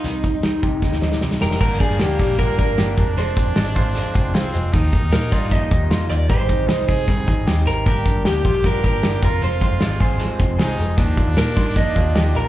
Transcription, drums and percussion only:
0.04 closed hi-hat loud
0.24 kick medium
0.24 closed hi-hat medium
0.43 snare loud
0.43 closed hi-hat medium
0.63 kick medium
0.63 closed hi-hat medium
0.82 kick medium
0.82 snare medium
0.93 snare medium
1.02 snare medium
1.12 snare medium
1.21 snare medium
1.31 snare medium
1.41 snare medium
1.51 snare medium
1.60 kick loud
1.60 crash loud
1.80 kick medium
1.80 hi-hat pedal medium
1.80 open hi-hat medium
2.00 snare loud
2.00 hi-hat pedal medium
2.00 open hi-hat loud
2.19 kick medium
2.19 snare soft
2.19 hi-hat pedal medium
2.19 open hi-hat medium
2.39 kick medium
2.39 hi-hat pedal medium
2.39 open hi-hat loud
2.58 kick medium
2.58 hi-hat pedal medium
2.58 open hi-hat medium
2.78 snare loud
2.78 hi-hat pedal medium
2.78 open hi-hat loud
2.97 kick loud
2.97 hi-hat pedal medium
2.97 open hi-hat medium
3.17 hi-hat pedal medium
3.17 open hi-hat loud
3.36 kick loud
3.36 hi-hat pedal medium
3.36 open hi-hat medium
3.56 snare loud
3.56 hi-hat pedal medium
3.56 open hi-hat loud
3.76 kick medium
3.76 hi-hat pedal medium
3.76 open hi-hat medium
3.95 hi-hat pedal medium
3.95 open hi-hat loud
4.15 kick loud
4.15 hi-hat pedal medium
4.15 open hi-hat medium
4.35 snare loud
4.35 hi-hat pedal medium
4.35 open hi-hat medium
4.54 hi-hat pedal medium
4.54 open hi-hat medium
4.74 kick loud
4.74 hi-hat pedal medium
4.74 open hi-hat loud
4.93 kick loud
4.93 hi-hat pedal medium
4.93 open hi-hat medium
5.13 snare loud
5.13 hi-hat pedal medium
5.13 open hi-hat loud
5.32 kick medium
5.32 hi-hat pedal medium
5.32 open hi-hat medium
5.51 kick loud
5.51 hi-hat pedal medium
5.51 open hi-hat loud
5.71 kick loud
5.71 hi-hat pedal medium
5.71 open hi-hat medium
5.91 snare loud
5.91 hi-hat pedal medium
5.91 open hi-hat loud
6.10 hi-hat pedal medium
6.10 open hi-hat medium
6.30 kick loud
6.30 hi-hat pedal medium
6.30 open hi-hat loud
6.49 kick loud
6.49 hi-hat pedal medium
6.49 open hi-hat medium
6.69 snare loud
6.69 hi-hat pedal medium
6.69 open hi-hat loud
6.89 kick medium
6.89 hi-hat pedal medium
6.89 open hi-hat medium
7.08 kick loud
7.08 hi-hat pedal medium
7.08 open hi-hat loud
7.28 kick medium
7.28 hi-hat pedal medium
7.28 open hi-hat medium
7.47 snare loud
7.47 hi-hat pedal medium
7.47 open hi-hat loud
7.67 hi-hat pedal medium
7.67 open hi-hat medium
7.86 kick loud
7.86 hi-hat pedal medium
7.86 open hi-hat loud
8.05 kick loud
8.05 hi-hat pedal medium
8.05 open hi-hat medium
8.25 snare loud
8.25 hi-hat pedal medium
8.25 open hi-hat loud
8.45 kick loud
8.45 hi-hat pedal medium
8.45 open hi-hat medium
8.64 kick loud
8.64 hi-hat pedal medium
8.64 open hi-hat loud
8.84 kick medium
8.84 hi-hat pedal medium
8.84 open hi-hat medium
9.03 snare loud
9.03 hi-hat pedal medium
9.03 open hi-hat loud
9.22 kick loud
9.22 hi-hat pedal medium
9.22 open hi-hat medium
9.42 hi-hat pedal medium
9.42 open hi-hat loud
9.61 kick medium
9.61 hi-hat pedal medium
9.61 open hi-hat medium
9.81 snare loud
9.81 hi-hat pedal medium
9.81 open hi-hat loud
10.00 kick medium
10.00 hi-hat pedal medium
10.00 open hi-hat medium
10.20 hi-hat pedal medium
10.20 open hi-hat loud
10.39 kick loud
10.39 hi-hat pedal medium
10.39 open hi-hat medium
10.59 snare loud
10.59 hi-hat pedal medium
10.59 open hi-hat loud
10.78 hi-hat pedal medium
10.78 open hi-hat medium
10.98 kick loud
10.98 hi-hat pedal medium
10.98 open hi-hat loud
11.17 kick loud
11.17 hi-hat pedal medium
11.17 open hi-hat medium
11.37 snare loud
11.37 hi-hat pedal medium
11.37 open hi-hat loud
11.57 kick loud
11.57 hi-hat pedal medium
11.57 open hi-hat medium
11.76 kick loud
11.76 hi-hat pedal medium
11.76 open hi-hat loud
11.96 kick medium
11.96 hi-hat pedal medium
11.96 open hi-hat medium
12.15 snare loud
12.15 hi-hat pedal medium
12.15 open hi-hat loud
12.35 hi-hat pedal medium
12.35 open hi-hat medium

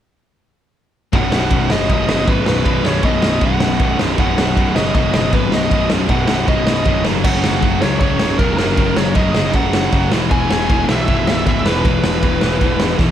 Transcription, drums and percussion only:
1.13 kick loud
1.13 ride medium
1.32 snare loud
1.50 kick loud
1.50 ride medium
1.70 snare loud
1.89 kick loud
1.89 ride medium
2.09 snare loud
2.27 kick loud
2.27 ride medium
2.46 snare loud
2.65 kick loud
2.65 ride medium
2.85 snare loud
3.03 kick loud
3.03 ride medium
3.22 snare loud
3.41 kick loud
3.41 ride medium
3.60 snare loud
3.79 kick loud
3.79 ride medium
3.99 snare loud
4.18 kick loud
4.18 ride medium
4.38 snare loud
4.57 kick loud
4.57 ride medium
4.76 snare loud
4.95 kick loud
4.95 ride medium
5.14 snare loud
5.33 kick loud
5.33 ride medium
5.52 snare loud
5.71 kick loud
5.71 ride medium
5.90 snare loud
6.09 kick loud
6.09 ride medium
6.28 snare loud
6.48 kick loud
6.48 ride medium
6.67 snare loud
6.85 kick loud
6.85 ride medium
7.05 snare loud
7.24 kick loud
7.24 crash loud
7.44 snare loud
7.62 kick loud
7.62 ride medium
7.82 snare loud
8.00 kick loud
8.00 ride medium
8.19 snare loud
8.39 kick loud
8.39 ride medium
8.58 snare loud
8.77 kick loud
8.77 ride medium
8.97 snare loud
9.15 kick loud
9.15 ride medium
9.35 snare loud
9.53 kick loud
9.53 ride medium
9.73 snare loud
9.92 kick loud
9.92 ride medium
10.12 snare loud
10.31 kick loud
10.31 ride medium
10.51 snare loud
10.70 kick loud
10.70 ride medium
10.89 snare loud
11.08 kick loud
11.08 ride medium
11.27 snare loud
11.47 kick loud
11.47 ride medium
11.66 snare loud
11.85 kick loud
11.85 ride medium
12.04 snare loud
12.23 kick loud
12.23 ride medium
12.41 snare loud
12.61 kick loud
12.61 ride medium
12.80 snare loud
12.98 kick loud
12.98 snare medium

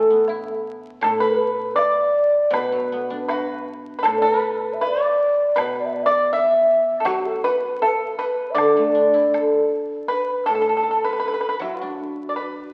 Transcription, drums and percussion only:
0.28 low woodblock soft
1.03 high woodblock medium
1.78 low woodblock medium
2.54 high woodblock medium
3.29 high woodblock medium
3.29 low woodblock medium
4.05 high woodblock medium
4.82 low woodblock medium
5.58 high woodblock medium
6.34 low woodblock soft
7.06 high woodblock medium
7.82 low woodblock medium
8.58 high woodblock medium
9.34 high woodblock soft

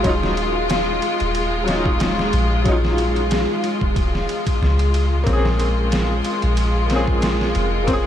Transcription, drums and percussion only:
0.04 kick loud
0.04 ride medium
0.23 snare medium
0.37 ride medium
0.70 snare loud
0.70 ride medium
1.02 ride medium
1.20 ride soft
1.35 ride medium
1.68 snare medium
1.68 ride medium
1.86 kick loud
2.00 snare loud
2.00 ride medium
2.19 snare soft
2.33 ride medium
2.66 kick loud
2.66 ride medium
2.85 snare medium
2.98 ride medium
3.16 ride soft
3.31 snare loud
3.31 ride medium
3.64 ride medium
3.81 kick medium
3.96 kick loud
3.96 ride medium
4.15 snare soft
4.29 ride medium
4.47 kick medium
4.47 ride medium
4.63 snare soft
4.79 ride medium
4.94 ride medium
5.27 kick loud
5.27 ride medium
5.45 snare medium
5.60 ride medium
5.92 snare loud
5.92 ride medium
6.25 ride medium
6.42 ride soft
6.57 ride medium
6.90 snare medium
6.90 ride medium
7.08 kick medium
7.22 snare loud
7.22 ride medium
7.41 snare medium
7.55 ride medium
7.88 kick loud
7.88 ride medium

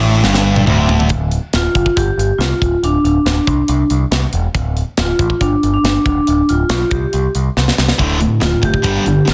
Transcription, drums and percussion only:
0.03 crash medium
0.24 snare medium
0.34 snare medium
0.56 high tom medium
0.67 mid tom medium
0.89 floor tom medium
1.00 floor tom medium
1.09 kick loud
1.09 closed hi-hat medium
1.31 closed hi-hat medium
1.53 snare medium
1.53 closed hi-hat medium
1.75 kick medium
1.75 closed hi-hat medium
1.86 kick medium
1.97 kick medium
1.97 closed hi-hat medium
2.19 closed hi-hat medium
2.41 snare medium
2.41 closed hi-hat medium
2.62 kick medium
2.62 closed hi-hat soft
2.84 closed hi-hat medium
3.05 closed hi-hat soft
3.26 snare medium
3.26 closed hi-hat medium
3.47 kick medium
3.47 closed hi-hat medium
3.68 closed hi-hat medium
3.90 closed hi-hat medium
4.12 snare medium
4.12 closed hi-hat medium
4.33 closed hi-hat medium
4.55 kick loud
4.55 closed hi-hat medium
4.77 closed hi-hat soft
4.97 snare loud
4.97 closed hi-hat medium
5.19 kick medium
5.19 closed hi-hat medium
5.30 kick medium
5.41 kick medium
5.41 closed hi-hat medium
5.63 closed hi-hat soft
5.85 snare medium
5.85 closed hi-hat medium
6.06 kick medium
6.06 closed hi-hat soft
6.27 closed hi-hat medium
6.49 closed hi-hat soft
6.70 snare medium
6.70 closed hi-hat medium
6.91 kick medium
6.91 closed hi-hat soft
7.13 closed hi-hat medium
7.35 closed hi-hat medium
7.57 snare soft
7.68 snare medium
7.78 snare medium
7.88 snare medium
7.99 kick medium
7.99 closed hi-hat medium
8.20 closed hi-hat medium
8.41 snare medium
8.41 closed hi-hat medium
8.63 kick medium
8.63 closed hi-hat medium
8.74 kick medium
8.84 kick medium
8.84 closed hi-hat medium
9.06 closed hi-hat medium
9.27 snare medium
9.27 closed hi-hat medium

